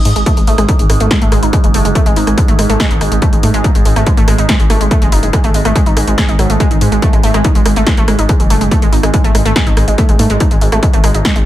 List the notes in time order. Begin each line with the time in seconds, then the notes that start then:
Already playing: G#2 D#6
0.05 G#2 G#3, open hi-hat
0.16 G#1 G#3, closed hi-hat
0.26 A3, kick, closed hi-hat
0.37 G#1 G#3, closed hi-hat
0.47 G#1 A3, open hi-hat
0.58 G#1 G#3, cross-stick, closed hi-hat
0.69 D#4, kick, closed hi-hat
0.79 G#1 G#3, closed hi-hat
0.90 G#1 G#3, cross-stick, open hi-hat
1.00 G#1 A3, closed hi-hat
1.11 G#3, kick, snare, closed hi-hat
1.22 G#1 A3, closed hi-hat
1.32 G#1 G#3, cross-stick, open hi-hat
1.43 G#1 D#4, closed hi-hat
1.53 G#3, kick, closed hi-hat
1.64 F#1 G#3, closed hi-hat
1.74 F#1 A3, open hi-hat
1.85 F#1 G#3, closed hi-hat
1.95 A3, kick, closed hi-hat
2.06 G#1 G#3, closed hi-hat
2.16 G#1 D#4, open hi-hat
2.27 G#1 G#3, cross-stick, closed hi-hat
2.38 G#3, kick, closed hi-hat
2.48 G#1 A3, closed hi-hat
2.59 G#1 G#3, cross-stick, open hi-hat
2.69 G#1 A3, closed hi-hat
2.80 G#3, kick, snare, closed hi-hat
2.90 G#1 D#4, closed hi-hat
3.01 G#1 G#3, cross-stick, open hi-hat
3.11 G#1 G#3, closed hi-hat
3.22 A3, kick, closed hi-hat
3.33 G#1 G#3, closed hi-hat
3.43 G#2 A3, open hi-hat
3.54 G#1 G#3, closed hi-hat
3.64 D#4, kick, closed hi-hat
3.75 G#1 G#3, closed hi-hat
3.85 G#1 G#3, open hi-hat
3.96 G#1 A3, cross-stick, closed hi-hat
4.07 G#3, kick, closed hi-hat
4.17 G#1 A3, closed hi-hat
4.28 G#1 G#3, cross-stick, open hi-hat
4.38 G#1 D#4, closed hi-hat
4.49 G#3, kick, snare, closed hi-hat
4.60 G#1 G#3, closed hi-hat
4.70 G#1 A3, cross-stick, open hi-hat
4.81 G#1 G#3, closed hi-hat
4.91 A3, kick, closed hi-hat
5.02 F#1 G#3, closed hi-hat
5.12 F#1 D#4, open hi-hat
5.23 F#1 G#3, closed hi-hat
5.33 G#3, kick, cross-stick, closed hi-hat
5.44 G#1 A3, closed hi-hat
5.54 G#1 G#3, open hi-hat
5.65 G#1 A3, cross-stick, closed hi-hat
5.76 G#3, kick, closed hi-hat
5.86 G#1 D#4, closed hi-hat
5.97 G#1 G#3, cross-stick, open hi-hat
6.08 G#1 G#3, closed hi-hat
6.18 G#4, kick, snare, closed hi-hat
6.29 G#1 D#4, closed hi-hat
6.39 G#1 F#3, cross-stick, open hi-hat
6.50 G#1 A3, closed hi-hat
6.60 G#3, kick, closed hi-hat
6.71 G#1 D#4, closed hi-hat
6.81 G#2 G#3, open hi-hat
6.92 G#1 G#3, closed hi-hat
7.02 A3, kick, closed hi-hat
7.13 G#1 G#3, closed hi-hat
7.23 G#1 A3, open hi-hat
7.34 G#1 G#3, cross-stick, closed hi-hat
7.44 D#4, kick, closed hi-hat
7.55 G#1 G#3, closed hi-hat
7.66 G#1 G#3, cross-stick, open hi-hat
7.76 G#1 A3, closed hi-hat
7.87 G#3, kick, snare, closed hi-hat
7.97 G#1 A3, closed hi-hat
8.08 G#1 G#3, cross-stick, open hi-hat
8.19 G#1 D#4, closed hi-hat
8.29 G#3, kick, closed hi-hat
8.40 F#1 G#3, closed hi-hat
8.50 F#1 A3, open hi-hat
8.61 F#1 G#3, closed hi-hat
8.71 A3, kick, closed hi-hat
8.82 G#1 G#3, closed hi-hat
8.92 G#1 D#4, open hi-hat
9.03 G#1 G#3, cross-stick, closed hi-hat
9.14 G#3, kick, closed hi-hat
9.24 G#1 A3, closed hi-hat
9.35 G#1 G#3, cross-stick, open hi-hat
9.45 G#1 A3, closed hi-hat
9.56 G#3, kick, snare, closed hi-hat
9.67 G#1 D#4, closed hi-hat
9.77 G#1 G#3, cross-stick, open hi-hat
9.88 G#1 G#3, closed hi-hat
9.98 A3, kick, closed hi-hat
10.09 G#1 G#3, closed hi-hat
10.19 G#2 A3, open hi-hat
10.30 G#1 G#3, closed hi-hat
10.40 D#4, kick, closed hi-hat
10.51 G#1 G#3, closed hi-hat
10.61 G#1 G#3, open hi-hat
10.72 G#1 A3, cross-stick, closed hi-hat
10.83 G#3, kick, closed hi-hat
10.93 G#1 A3, closed hi-hat
11.04 G#1 G#3, cross-stick, open hi-hat
11.14 G#1 D#4, closed hi-hat
11.25 G#3, kick, snare, closed hi-hat
11.36 G#1 G#3, closed hi-hat